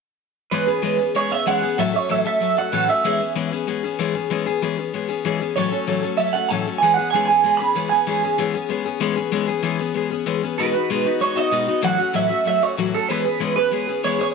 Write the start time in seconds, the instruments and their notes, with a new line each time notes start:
0.51 steel-string acoustic guitar E3 G#3 B3 C#4 G#4, clean electric guitar B4
0.67 steel-string acoustic guitar B3 C#4 G#4
0.82 steel-string acoustic guitar E3 G#3 B3 C#4 G#4
0.98 steel-string acoustic guitar B3 C#4 G#4
1.15 steel-string acoustic guitar G#3 B3 C#4 G#4, clean electric guitar C#5
1.30 steel-string acoustic guitar B3 C#4 G#4, clean electric guitar E5
1.46 steel-string acoustic guitar E3 G#3 B3 C#4 G#4, clean electric guitar F#5
1.62 steel-string acoustic guitar B3 C#4 G#4
1.78 steel-string acoustic guitar A2 E3 F#3 A3 C#4 A4, clean electric guitar E5
1.94 steel-string acoustic guitar F#3 A3 C#4 A4, clean electric guitar C#5
2.09 steel-string acoustic guitar A2 E3 F#3 A3 C#4 A4, clean electric guitar E5
2.25 steel-string acoustic guitar F#3 A3 C#4 A4, clean electric guitar E5
2.41 steel-string acoustic guitar F#3 A3 C#4 A4
2.57 steel-string acoustic guitar F#3 A3 C#4 A4, clean electric guitar F#5
2.72 steel-string acoustic guitar A2 E3 F#3 A3 C#4 A4
2.88 steel-string acoustic guitar F#3 A3 C#4 A4, clean electric guitar E5
3.04 steel-string acoustic guitar E3 G#3 B3 C#4 G#4
3.20 steel-string acoustic guitar B3 C#4 G#4
3.35 steel-string acoustic guitar E3 G#3 B3 C#4 G#4
3.51 steel-string acoustic guitar B3 C#4 G#4
3.67 steel-string acoustic guitar G#3 B3 C#4 G#4
3.83 steel-string acoustic guitar B3 C#4 G#4
3.99 steel-string acoustic guitar E3 G#3 B3 C#4 G#4
4.15 steel-string acoustic guitar B3 C#4 G#4
4.30 steel-string acoustic guitar E3 G#3 B3 C#4 G#4
4.46 steel-string acoustic guitar B3 C#4 G#4
4.62 steel-string acoustic guitar E3 G#3 B3 C#4 G#4
4.77 steel-string acoustic guitar B3 C#4 G#4
4.93 steel-string acoustic guitar G#3 B3 C#4 G#4
5.09 steel-string acoustic guitar B3 C#4 G#4
5.25 steel-string acoustic guitar E3 G#3 B3 C#4 G#4
5.40 steel-string acoustic guitar B3 C#4 G#4
5.56 steel-string acoustic guitar A2 E3 F#3 A3 C#4 A4, clean electric guitar C#5
5.71 steel-string acoustic guitar F#3 A3 C#4 A4
5.87 steel-string acoustic guitar A2 E3 F#3 A3 C#4 A4
6.02 steel-string acoustic guitar F#3 A3 C#4 A4
6.17 steel-string acoustic guitar F#3 A3 C#4 A4, clean electric guitar E5
6.33 steel-string acoustic guitar F#3 A3 C#4 A4, clean electric guitar F#5
6.49 steel-string acoustic guitar A2 E3 F#3 A3 C#4 A4, clean electric guitar A5
6.67 steel-string acoustic guitar F#3 A3 C#4 A4
6.78 steel-string acoustic guitar E3 G#3, clean electric guitar G#5
6.83 steel-string acoustic guitar B3 C#4 G#4
6.94 steel-string acoustic guitar G#4, clean electric guitar F#5
6.99 steel-string acoustic guitar B3 C#4
7.11 steel-string acoustic guitar E3 G#3 B3, clean electric guitar G#5
7.15 steel-string acoustic guitar C#4 G#4
7.25 steel-string acoustic guitar G#4, clean electric guitar G#5
7.30 steel-string acoustic guitar B3 C#4
7.44 steel-string acoustic guitar G#3 B3 C#4 G#4
7.57 steel-string acoustic guitar C#4 G#4, clean electric guitar B5
7.62 steel-string acoustic guitar B3
7.75 steel-string acoustic guitar E3 G#3 B3 C#4 G#4
7.89 steel-string acoustic guitar B3 C#4 G#4, clean electric guitar G#5
8.07 steel-string acoustic guitar E3 G#3 B3 C#4 G#4
8.23 steel-string acoustic guitar B3 C#4 G#4
8.38 steel-string acoustic guitar E3 G#3 B3 C#4 G#4
8.54 steel-string acoustic guitar B3 C#4 G#4
8.69 steel-string acoustic guitar G#3 B3 C#4 G#4
8.85 steel-string acoustic guitar B3 C#4 G#4
9.00 steel-string acoustic guitar E3 G#3 B3 C#4 G#4
9.16 steel-string acoustic guitar B3 C#4 G#4
9.32 steel-string acoustic guitar E3 G#3 B3 C#4 G#4
9.47 steel-string acoustic guitar B3 C#4 G#4
9.63 steel-string acoustic guitar E3 G#3 B3 C#4 G#4
9.79 steel-string acoustic guitar B3 C#4 G#4
9.94 steel-string acoustic guitar G#3 B3 C#4 G#4
10.10 steel-string acoustic guitar B3 C#4 G#4
10.26 steel-string acoustic guitar E3 G#3 B3 C#4 G#4
10.42 steel-string acoustic guitar B3 C#4 G#4
10.58 steel-string acoustic guitar B2 G#3 B3 D#4 F#4, clean electric guitar B4
10.73 steel-string acoustic guitar B3 D#4 F#4
10.90 steel-string acoustic guitar B2 G#3 B3 D#4 F#4
11.05 steel-string acoustic guitar B3 D#4 F#4
11.21 steel-string acoustic guitar G#3 B3 D#4 F#4, clean electric guitar C#5
11.35 steel-string acoustic guitar B3 D#4 F#4, clean electric guitar D#5
11.51 steel-string acoustic guitar B2 G#3 B3 D#4 F#4
11.67 steel-string acoustic guitar B3 D#4 F#4
11.82 steel-string acoustic guitar A2 E3 F#3 A3 C#4 F#4, clean electric guitar F#5
11.98 steel-string acoustic guitar F#3 A3 C#4 F#4
12.13 steel-string acoustic guitar A2 E3 F#3 A3 C#4 F#4, clean electric guitar E5
12.29 steel-string acoustic guitar F#3 A3 C#4 F#4
12.45 steel-string acoustic guitar F#3 A3 C#4 F#4, clean electric guitar E5
12.61 steel-string acoustic guitar F#3 A3 C#4 F#4, clean electric guitar C#5
12.77 steel-string acoustic guitar A2 E3 F#3 A3 C#4 F#4
12.93 steel-string acoustic guitar F#3 A3 C#4 F#4, clean electric guitar A4
13.09 steel-string acoustic guitar E3 G#3 B3 C#4 G#4, clean electric guitar B4
13.25 steel-string acoustic guitar B3 C#4 G#4
13.40 steel-string acoustic guitar E3 G#3 B3 C#4 G#4
13.56 steel-string acoustic guitar B3 C#4 G#4, clean electric guitar B4
13.71 steel-string acoustic guitar G#3 B3 C#4 G#4
13.87 steel-string acoustic guitar B3 C#4 G#4
14.04 steel-string acoustic guitar E3 G#3 B3 C#4 G#4, clean electric guitar C#5
14.19 steel-string acoustic guitar B3 C#4 G#4, clean electric guitar C#5